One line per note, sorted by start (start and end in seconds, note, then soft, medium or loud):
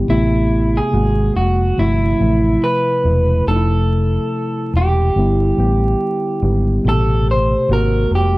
0.00 0.11 D3 medium
0.00 0.11 G3 medium
0.00 0.09 B3 medium
0.00 0.10 E4 medium
0.00 0.10 G4 medium
0.07 0.79 A1 medium
0.07 0.90 C3 medium
0.07 0.93 A3 medium
0.07 0.93 B3 medium
0.07 0.78 E4 medium
0.07 0.94 G4 medium
0.77 1.36 G#4 medium
0.91 1.28 G#1 loud
0.91 1.62 C3 medium
0.91 1.62 G#3 medium
0.91 1.63 A#3 medium
0.91 1.63 F#4 medium
1.36 1.71 F1 medium
1.36 1.79 F#4 medium
1.76 2.13 G1 medium
1.76 2.12 C3 medium
1.76 2.12 F3 medium
1.76 2.13 A3 medium
1.76 2.65 E4 medium
1.76 2.13 E4 medium
2.19 2.55 A1 medium
2.19 2.83 C3 medium
2.19 2.83 F3 medium
2.19 2.84 A3 medium
2.19 2.84 E4 medium
2.64 3.48 B4 medium
3.03 3.40 E1 medium
3.03 3.36 C3 medium
3.03 3.36 F3 medium
3.03 3.37 A3 medium
3.03 3.37 E4 medium
3.47 4.17 F1 medium
3.47 4.69 C3 medium
3.47 4.70 F3 medium
3.47 4.70 A3 medium
3.47 3.55 D#4 medium
3.47 4.76 A4 loud
3.56 4.74 E4 medium
4.73 5.08 E1 medium
4.73 6.40 G4 medium
5.16 5.51 G1 medium
5.16 5.51 D3 medium
5.16 5.51 G3 medium
5.16 5.52 B3 medium
5.16 5.52 E4 medium
5.56 5.93 A1 medium
5.56 6.21 D3 medium
5.56 6.21 G3 medium
5.56 6.22 B3 medium
5.56 6.22 G4 medium
6.42 6.77 G#1 medium
6.42 6.74 D3 medium
6.42 6.74 G3 medium
6.42 6.75 B3 medium
6.42 6.75 G4 medium
6.84 7.54 A1 loud
6.84 7.70 B2 medium
6.84 7.67 C3 medium
6.84 7.69 A3 medium
6.84 7.70 G4 medium
6.89 7.30 A4 medium
7.31 7.72 C5 medium
7.68 8.04 G#1 loud
7.68 8.38 C3 medium
7.68 8.38 G#3 medium
7.68 8.38 A#3 medium
7.68 8.38 F#4 medium
7.73 8.10 A#4 medium
8.11 8.38 F1 medium
8.15 8.38 G4 medium